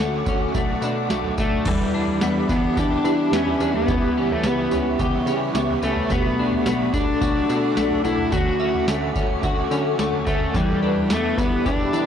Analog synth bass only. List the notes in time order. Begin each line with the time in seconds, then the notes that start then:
0.00 D2
0.26 D2
0.54 B1
0.82 B2
1.09 B1
1.38 B1
1.66 E2
2.21 E2
2.49 E2
2.77 E2
3.04 E3
3.32 E2
3.60 E2
3.88 C#2
4.44 C#2
4.71 C#2
4.99 C#2
5.26 C#3
5.55 C#2
5.82 C#2
6.10 B1
6.66 B1
6.93 B1
7.21 B1
7.50 B2
7.77 B1
8.05 B1
8.32 D2
8.88 D2
9.16 D2
9.43 D2
9.71 D3
9.99 D2
10.27 D2
10.54 E2
11.10 E2
11.38 E2
11.66 E2
11.93 E3